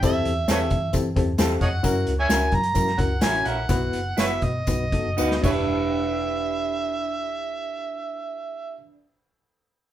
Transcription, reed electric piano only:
X:1
M:4/4
L:1/8
Q:1/4=120
K:Em
V:1 name="Reed electric piano"
[CEGA] z [CEGA] z [CEGA] [CEGA] [CEGA] z | [^CEF^A] z [CEFA] z [CEFA] [CEFA] [CEF^c] z | [B,EFB] z [B,EFB] z [B,^DFB] [B,DFA] [B,DFB] [=DEGB]- | [DEGB]8- |
[DEGB]8 |]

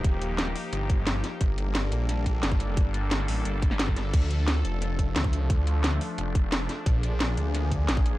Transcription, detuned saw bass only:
X:1
M:4/4
L:1/8
Q:1/4=176
K:Dphr
V:1 name="Detuned saw bass" clef=bass
E,,,3 z G,,,3 z | G,,,3 B,,,3 G,,,2 | G,,,3 A,,, G,,,3 G,,, | D,,3 F,,,3 D,,2 |
D,,3 z F,,,3 z | B,,,3 D,,3 B,,,2 |]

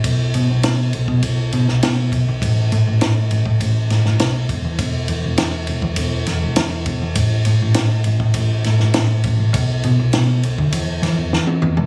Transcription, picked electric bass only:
X:1
M:4/4
L:1/16
Q:1/4=101
K:A
V:1 name="Picked electric bass" clef=bass
B,,,2 B,, B,,, B,,2 B,,, B,, B,,,2 B,, B,,, B,,2 B,,, B,,, | A,,,2 A,, A,,, A,,2 A,,, A,, A,,,2 A,, A,,, B,,,2 E,,, E,, | E,,,2 E,, E,,, E,,2 E,,, E,, E,,,2 E,, E,,, E,,2 E,,, E,, | A,,,2 A,, A,,, A,,2 A,,, A,, A,,,2 A,, A,,, A,,2 A,,, A,,, |
B,,,2 B,, B,,, B,,2 B,,, D,, E,,2 E, E,, E,2 E,, E, |]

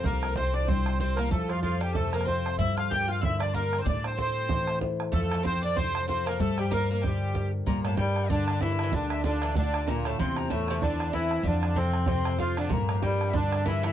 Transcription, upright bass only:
X:1
M:4/4
L:1/8
Q:"Swing" 1/4=190
K:Gdor
V:1 name="Upright bass" clef=bass
C,,8 | F,,8 | G,,8 | A,,8 |
F,,8 | G,,8 | G,,8 | D,,8 |
E,,8 | F,,8 | G,,8 |]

